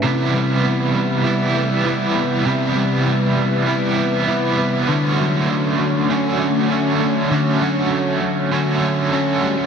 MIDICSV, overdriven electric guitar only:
0, 0, Header, 1, 2, 480
1, 0, Start_track
1, 0, Tempo, 606061
1, 26, Time_signature, 4, 2, 24, 8
1, 7653, End_track
2, 0, Start_track
2, 0, Title_t, "Overdriven electric guitar"
2, 0, Program_c, 0, 29
2, 19, Note_on_c, 0, 48, 80
2, 28, Note_on_c, 0, 52, 83
2, 40, Note_on_c, 0, 55, 87
2, 48, Note_on_c, 0, 59, 96
2, 52, Note_on_c, 0, 64, 83
2, 970, Note_off_c, 0, 52, 0
2, 979, Note_off_c, 0, 55, 0
2, 980, Note_on_c, 0, 52, 64
2, 982, Note_off_c, 0, 48, 0
2, 989, Note_on_c, 0, 55, 68
2, 990, Note_off_c, 0, 59, 0
2, 996, Note_off_c, 0, 64, 0
2, 1000, Note_on_c, 0, 59, 65
2, 1006, Note_on_c, 0, 64, 76
2, 1455, Note_off_c, 0, 52, 0
2, 1464, Note_on_c, 0, 52, 64
2, 1465, Note_off_c, 0, 55, 0
2, 1471, Note_off_c, 0, 59, 0
2, 1474, Note_on_c, 0, 55, 69
2, 1476, Note_off_c, 0, 64, 0
2, 1480, Note_on_c, 0, 59, 69
2, 1491, Note_on_c, 0, 64, 77
2, 1934, Note_on_c, 0, 48, 84
2, 1935, Note_off_c, 0, 52, 0
2, 1944, Note_off_c, 0, 55, 0
2, 1945, Note_on_c, 0, 52, 81
2, 1953, Note_off_c, 0, 59, 0
2, 1954, Note_on_c, 0, 55, 88
2, 1958, Note_off_c, 0, 64, 0
2, 1966, Note_on_c, 0, 59, 81
2, 1971, Note_on_c, 0, 64, 87
2, 2892, Note_off_c, 0, 52, 0
2, 2900, Note_off_c, 0, 48, 0
2, 2901, Note_off_c, 0, 55, 0
2, 2902, Note_on_c, 0, 52, 66
2, 2909, Note_off_c, 0, 59, 0
2, 2910, Note_on_c, 0, 55, 67
2, 2918, Note_off_c, 0, 64, 0
2, 2918, Note_on_c, 0, 59, 72
2, 2926, Note_on_c, 0, 64, 74
2, 3380, Note_off_c, 0, 52, 0
2, 3388, Note_off_c, 0, 55, 0
2, 3390, Note_on_c, 0, 52, 69
2, 3392, Note_off_c, 0, 59, 0
2, 3396, Note_off_c, 0, 64, 0
2, 3397, Note_on_c, 0, 55, 69
2, 3408, Note_on_c, 0, 59, 65
2, 3415, Note_on_c, 0, 64, 70
2, 3856, Note_off_c, 0, 52, 0
2, 3859, Note_on_c, 0, 50, 82
2, 3871, Note_off_c, 0, 55, 0
2, 3877, Note_off_c, 0, 59, 0
2, 3877, Note_on_c, 0, 57, 87
2, 3881, Note_off_c, 0, 64, 0
2, 3889, Note_on_c, 0, 61, 95
2, 3901, Note_on_c, 0, 66, 92
2, 4819, Note_off_c, 0, 50, 0
2, 4825, Note_off_c, 0, 57, 0
2, 4829, Note_on_c, 0, 50, 72
2, 4835, Note_on_c, 0, 57, 71
2, 4838, Note_off_c, 0, 61, 0
2, 4841, Note_off_c, 0, 66, 0
2, 4846, Note_on_c, 0, 61, 67
2, 4850, Note_on_c, 0, 66, 72
2, 5299, Note_off_c, 0, 50, 0
2, 5306, Note_off_c, 0, 57, 0
2, 5308, Note_on_c, 0, 50, 67
2, 5315, Note_on_c, 0, 57, 63
2, 5316, Note_off_c, 0, 61, 0
2, 5318, Note_off_c, 0, 66, 0
2, 5325, Note_on_c, 0, 61, 73
2, 5331, Note_on_c, 0, 66, 71
2, 5780, Note_off_c, 0, 50, 0
2, 5790, Note_off_c, 0, 57, 0
2, 5790, Note_on_c, 0, 50, 86
2, 5795, Note_off_c, 0, 61, 0
2, 5798, Note_off_c, 0, 66, 0
2, 5799, Note_on_c, 0, 57, 84
2, 5805, Note_on_c, 0, 61, 89
2, 5812, Note_on_c, 0, 66, 89
2, 6019, Note_off_c, 0, 66, 0
2, 6028, Note_off_c, 0, 50, 0
2, 6028, Note_on_c, 0, 66, 54
2, 6031, Note_off_c, 0, 61, 0
2, 6033, Note_off_c, 0, 57, 0
2, 6041, Note_on_c, 0, 61, 46
2, 6052, Note_on_c, 0, 57, 45
2, 6743, Note_off_c, 0, 57, 0
2, 6746, Note_on_c, 0, 50, 70
2, 6747, Note_off_c, 0, 66, 0
2, 6749, Note_off_c, 0, 61, 0
2, 6752, Note_on_c, 0, 57, 70
2, 6759, Note_on_c, 0, 61, 70
2, 6768, Note_on_c, 0, 66, 70
2, 7210, Note_off_c, 0, 50, 0
2, 7217, Note_off_c, 0, 57, 0
2, 7220, Note_on_c, 0, 50, 68
2, 7226, Note_off_c, 0, 61, 0
2, 7226, Note_on_c, 0, 57, 69
2, 7234, Note_off_c, 0, 66, 0
2, 7236, Note_on_c, 0, 61, 70
2, 7243, Note_on_c, 0, 66, 77
2, 7653, Note_off_c, 0, 50, 0
2, 7653, Note_off_c, 0, 57, 0
2, 7653, Note_off_c, 0, 61, 0
2, 7653, Note_off_c, 0, 66, 0
2, 7653, End_track
0, 0, End_of_file